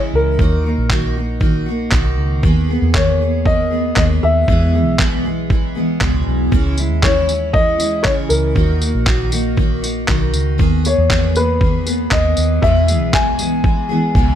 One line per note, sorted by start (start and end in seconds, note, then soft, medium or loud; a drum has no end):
0.00 0.12 C#2 medium
0.00 0.39 C#3 medium
0.00 0.39 E3 medium
0.00 0.39 G#3 medium
0.00 0.40 C#4 medium
0.00 0.40 E4 medium
0.14 0.39 C#2 medium
0.14 0.87 A#4 medium
0.39 0.75 D#2 medium
0.39 0.65 D#3 medium
0.39 0.65 A#3 medium
0.39 0.64 D#4 medium
0.39 0.63 F#4 medium
0.39 kick loud
0.64 0.89 A#3 soft
0.64 0.90 D#4 soft
0.64 0.90 F#4 soft
0.78 1.89 A#1 medium
0.90 1.16 D#3 medium
0.90 1.16 A#3 medium
0.90 1.16 D#4 medium
0.90 1.14 F#4 medium
0.90 kick loud
0.90 clap loud
1.15 1.40 A#3 soft
1.15 1.41 D#4 soft
1.15 1.41 F#4 medium
1.40 1.66 D#3 medium
1.40 1.67 A#3 medium
1.40 1.67 D#4 medium
1.40 1.65 F#4 medium
1.40 kick loud
1.66 1.91 A#3 medium
1.66 1.92 D#4 medium
1.66 1.92 F#4 medium
1.92 2.16 B1 medium
1.92 2.42 D#3 medium
1.92 2.43 A#3 medium
1.92 2.44 D#4 loud
1.92 2.44 F#4 loud
1.92 kick loud
1.92 clap loud
2.18 2.44 C#2 medium
2.43 2.79 D#2 medium
2.43 2.69 D#3 medium
2.43 2.69 A#3 medium
2.43 2.69 B3 medium
2.43 2.67 G#4 medium
2.43 kick loud
2.68 2.94 A#3 soft
2.68 2.95 B3 medium
2.68 2.94 G#4 medium
2.82 3.93 E2 medium
2.94 3.20 D#3 medium
2.94 3.21 A#3 medium
2.94 3.20 B3 medium
2.94 3.18 G#4 medium
2.94 3.47 C#5 medium
2.94 kick loud
2.94 clap loud
3.20 3.46 A#3 soft
3.20 3.46 B3 soft
3.20 3.46 G#4 soft
3.45 3.71 D#3 medium
3.45 3.72 A#3 medium
3.45 3.71 B3 medium
3.45 3.69 G#4 medium
3.45 3.93 D#5 medium
3.45 kick medium
3.70 3.96 A#3 soft
3.70 3.97 B3 medium
3.70 3.97 G#4 soft
3.96 4.21 D#2 medium
3.96 4.48 D#3 medium
3.96 4.48 A#3 medium
3.96 4.49 B3 medium
3.96 4.50 G#4 medium
3.96 4.02 D#5 medium
3.96 kick loud
3.96 clap loud
4.23 4.46 D#2 medium
4.23 4.95 E5 loud
4.48 4.74 E2 medium
4.48 4.87 E2 medium
4.48 4.74 B2 medium
4.48 4.74 E3 medium
4.48 4.74 G#3 medium
4.48 4.73 B3 medium
4.48 4.72 G#4 medium
4.48 kick loud
4.73 4.98 E3 soft
4.73 4.98 G#3 soft
4.73 4.99 B3 soft
4.73 4.99 G#4 medium
4.87 5.97 B1 medium
4.98 5.24 E2 medium
4.98 5.25 B2 medium
4.98 5.25 E3 medium
4.98 5.25 G#3 medium
4.98 5.24 B3 loud
4.98 5.23 G#4 medium
4.98 kick loud
4.98 clap loud
5.24 5.49 E3 soft
5.24 5.49 G#3 soft
5.24 5.50 B3 medium
5.24 5.50 G#4 medium
5.50 5.75 E3 medium
5.50 5.76 G#3 medium
5.50 5.75 B3 medium
5.50 5.74 G#4 medium
5.50 kick loud
5.75 6.00 E3 soft
5.75 6.01 G#3 soft
5.75 6.01 B3 medium
5.75 6.01 G#4 medium
6.01 6.25 C#2 medium
6.01 6.52 E2 medium
6.01 6.52 B2 medium
6.01 6.52 E3 medium
6.01 6.53 G#3 loud
6.01 6.53 B3 medium
6.01 6.54 G#4 medium
6.01 kick loud
6.01 clap loud
6.27 6.51 B1 medium
6.52 6.91 C#2 medium
6.52 6.78 C#3 medium
6.52 6.78 E3 medium
6.52 6.78 G#3 medium
6.52 6.78 C#4 loud
6.52 6.76 E4 loud
6.52 kick loud
6.77 7.03 G#3 soft
6.77 7.03 C#4 medium
6.77 7.03 E4 medium
6.77 tambourine medium
6.91 8.05 D#2 medium
7.03 7.28 C#3 medium
7.03 7.29 E3 medium
7.03 7.29 G#3 medium
7.03 7.29 C#4 medium
7.03 7.27 E4 medium
7.03 7.51 C#5 medium
7.03 kick loud
7.03 clap loud
7.29 7.54 G#3 soft
7.29 7.55 C#4 soft
7.29 7.54 E4 soft
7.29 tambourine medium
7.53 7.79 E3 medium
7.53 7.80 G#3 medium
7.53 7.79 C#4 medium
7.53 7.77 E4 medium
7.53 8.01 D#5 loud
7.53 kick loud
7.78 8.04 G#3 soft
7.78 8.05 C#4 soft
7.78 8.04 E4 medium
7.78 tambourine medium
8.03 8.29 C#2 medium
8.03 8.56 C#3 medium
8.03 8.55 E3 medium
8.03 8.56 G#3 medium
8.03 8.56 C#4 medium
8.03 8.09 C#5 medium
8.03 kick loud
8.03 clap loud
8.07 8.57 E4 medium
8.29 8.56 C#2 medium
8.29 9.02 A#4 medium
8.29 tambourine medium
8.55 8.91 D#2 medium
8.55 8.81 D#3 medium
8.55 8.82 A#3 medium
8.55 8.81 D#4 medium
8.55 8.79 F#4 medium
8.55 kick loud
8.81 9.05 A#3 soft
8.81 9.06 D#4 soft
8.81 9.06 F#4 soft
8.81 tambourine medium
8.95 10.05 A#1 medium
9.05 9.32 D#3 medium
9.05 9.32 A#3 loud
9.05 9.32 D#4 loud
9.05 9.30 F#4 medium
9.05 kick loud
9.05 clap loud
9.31 9.57 A#3 soft
9.31 9.58 D#4 soft
9.31 9.57 F#4 medium
9.31 tambourine medium
9.57 9.83 D#3 medium
9.57 9.84 A#3 medium
9.57 9.82 D#4 medium
9.57 9.81 F#4 medium
9.57 kick loud
9.82 10.07 A#3 medium
9.82 10.08 D#4 soft
9.82 10.08 F#4 medium
9.82 tambourine medium
10.08 10.32 B1 medium
10.08 10.58 D#3 medium
10.08 10.58 A#3 medium
10.08 10.59 D#4 loud
10.08 10.60 F#4 medium
10.08 kick loud
10.08 clap loud
10.34 10.60 C#2 medium
10.34 tambourine medium
10.58 10.95 D#2 loud
10.58 10.84 D#3 medium
10.58 10.85 A#3 medium
10.58 10.85 B3 medium
10.58 10.83 G#4 loud
10.58 kick loud
10.84 11.10 A#3 soft
10.84 11.10 B3 soft
10.84 11.10 G#4 medium
10.84 11.38 C#5 medium
10.84 tambourine medium
10.98 12.09 E2 medium
11.10 11.36 D#3 medium
11.10 11.36 A#3 medium
11.10 11.35 B3 medium
11.10 11.34 G#4 medium
11.10 kick loud
11.10 clap loud
11.35 11.61 A#3 soft
11.35 11.62 B3 soft
11.35 11.61 G#4 soft
11.35 12.15 B4 medium
11.35 tambourine medium
11.61 11.87 D#3 medium
11.61 11.87 A#3 medium
11.61 11.86 B3 medium
11.61 11.85 G#4 medium
11.61 kick loud
11.86 12.12 A#3 soft
11.86 12.12 B3 soft
11.86 12.12 G#4 medium
11.86 tambourine medium
12.11 12.35 D#2 medium
12.11 12.63 D#3 medium
12.11 12.64 A#3 medium
12.11 12.64 B3 medium
12.11 12.65 G#4 medium
12.11 12.59 D#5 medium
12.11 kick loud
12.11 clap loud
12.37 12.61 D#2 medium
12.37 tambourine medium
12.62 12.88 E2 medium
12.62 13.01 E2 medium
12.62 12.89 B2 medium
12.62 12.89 E3 medium
12.62 12.89 G#3 medium
12.62 12.89 B3 medium
12.62 12.87 G#4 medium
12.62 13.15 E5 loud
12.62 kick loud
12.88 13.13 E3 soft
12.88 13.14 G#3 soft
12.88 13.14 B3 soft
12.88 13.14 G#4 medium
12.88 tambourine medium
13.01 14.12 B1 medium
13.13 13.39 E2 medium
13.13 13.40 B2 medium
13.13 13.40 E3 medium
13.13 13.40 G#3 medium
13.13 13.39 B3 medium
13.13 13.38 G#4 loud
13.13 14.35 G#5 loud
13.13 kick loud
13.13 clap loud
13.39 13.63 E3 soft
13.39 13.64 G#3 soft
13.39 13.65 B3 soft
13.39 13.64 G#4 medium
13.39 tambourine medium
13.64 13.90 E3 medium
13.64 13.90 G#3 medium
13.64 13.89 B3 medium
13.64 13.88 G#4 medium
13.64 kick loud
13.89 14.15 E3 medium
13.89 14.15 G#3 medium
13.89 14.16 B3 medium
13.89 14.15 G#4 medium
14.15 14.35 C#2 medium
14.15 14.35 E2 medium
14.15 14.35 B2 medium
14.15 14.35 E3 medium
14.15 14.35 G#3 medium
14.15 14.35 B3 medium
14.15 14.35 G#4 loud
14.15 kick loud